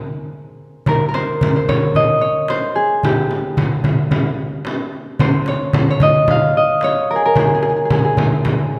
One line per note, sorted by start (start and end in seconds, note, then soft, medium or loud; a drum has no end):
0.00 0.47 G#4 medium
0.00 0.57 A#4 medium
0.00 0.70 C5 medium
0.07 darbuka ka soft
0.86 1.08 A#4 medium
0.86 darbuka dum medium
0.86 frame drum medium
1.01 darbuka ka soft
1.09 3.21 A#4 medium
1.14 1.56 C5 medium
1.14 darbuka tek medium
1.14 frame drum medium
1.41 darbuka dum medium
1.41 frame drum medium
1.56 1.75 C5 medium
1.69 2.21 C#5 loud
1.69 darbuka dum medium
1.69 frame drum medium
1.95 3.74 D#5 medium
1.95 darbuka dum medium
1.95 frame drum medium
2.21 2.56 C#5 medium
2.48 4.48 C5 loud
2.48 darbuka tek medium
2.48 frame drum medium
2.75 3.11 G#4 medium
2.75 darbuka ka soft
3.03 5.40 G4 medium
3.03 darbuka dum medium
3.03 frame drum medium
3.17 darbuka ka soft
3.31 frame drum medium
3.57 darbuka dum medium
3.57 frame drum medium
3.84 darbuka dum medium
3.84 frame drum medium
4.11 darbuka dum medium
4.11 frame drum medium
4.38 darbuka ka soft
4.65 darbuka tek medium
4.65 frame drum medium
4.93 darbuka ka soft
5.19 5.54 C5 medium
5.19 darbuka dum loud
5.19 frame drum loud
5.33 darbuka ka soft
5.46 5.90 C#5 medium
5.46 darbuka tek medium
5.46 frame drum medium
5.73 darbuka dum loud
5.73 frame drum loud
5.90 6.83 C#5 medium
6.00 6.57 D#5 loud
6.00 darbuka dum medium
6.00 frame drum medium
6.28 7.97 F5 medium
6.28 darbuka dum medium
6.28 frame drum medium
6.55 8.35 D#5 medium
6.55 darbuka ka soft
6.81 8.75 C#5 loud
6.81 darbuka tek medium
6.81 frame drum medium
7.09 7.25 A#4 medium
7.09 darbuka ka soft
7.16 7.38 G#4 medium
7.25 8.79 A#4 medium
7.36 7.47 G#4 medium
7.36 darbuka dum loud
7.36 frame drum medium
7.47 7.54 G#4 medium
7.47 darbuka ka soft
7.54 7.62 G#4 medium
7.62 7.69 G#4 medium
7.62 darbuka tek medium
7.69 7.76 G#4 medium
7.76 7.85 G#4 soft
7.76 darbuka ka soft
7.85 7.92 G#4 medium
7.90 7.98 G#4 medium
7.90 frame drum medium
7.90 darbuka dum medium
7.99 8.04 G#4 medium
8.05 8.79 G#4 medium
8.17 darbuka dum medium
8.17 frame drum loud
8.45 frame drum medium
8.45 darbuka dum medium